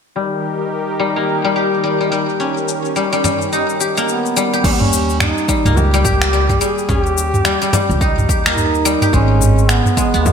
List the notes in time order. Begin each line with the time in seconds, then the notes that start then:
0.15 D#3 G3 D#4 G4 A#4
0.44 shaker
0.61 shaker
0.73 shaker
0.99 G3, shaker
1.16 A#3, shaker
1.29 shaker
1.45 G3
1.56 G4, shaker
1.74 shaker
1.84 G3, shaker
2.01 G3, shaker
2.12 G3, shaker
2.29 shaker
2.40 C#4, shaker
2.57 shaker
2.68 shaker
2.85 shaker
2.96 G3, shaker
3.13 G3, shaker
3.24 G3, frame drum, shaker
3.41 shaker
3.53 D#4, shaker
3.69 shaker
3.80 G4, shaker
3.97 A#3, shaker
4.08 B3, shaker
4.26 shaker
4.36 G3, shaker
4.54 G4, shaker
4.64 D#2 G3 C#4, kick, crash, shaker
4.72 B3
4.80 C#4, mid tom
4.93 shaker
5.10 shaker
5.20 D#4, finger snap, mid tom, shaker
5.38 shaker
5.48 G3, kick, shaker
5.65 C#2 A#3, mid tom, shaker
5.77 G4, frame drum, shaker
5.94 G3, shaker
6.05 G4, kick, mid tom, shaker
6.22 finger snap, shaker
6.33 G3, shaker
6.49 G3, kick, mid tom, shaker
6.61 G3 G#4, shaker
6.78 shaker
6.89 D#2 C#4 G4, kick, mid tom, shaker
7.06 shaker
7.18 shaker
7.34 mid tom, shaker
7.45 G3, finger snap, shaker
7.62 G3, shaker
7.73 G3, mid tom, frame drum, shaker
7.89 C#2, shaker
8.01 D#4, kick, shaker
8.18 mid tom, shaker
8.29 D#2 G4, kick, shaker
8.46 A#3, finger snap, shaker
8.51 E4
8.57 D#4, mid tom, shaker
8.74 shaker
8.85 G3, shaker
9.02 G4, mid tom, shaker
9.13 G#1 G#3 C#4, kick, shaker
9.41 mid tom, shaker
9.58 shaker
9.69 B3, finger snap, shaker
9.86 mid tom, shaker
9.97 G#3, kick, shaker
10.14 D#2 B3, shaker
10.25 A#3, mid tom, frame drum, shaker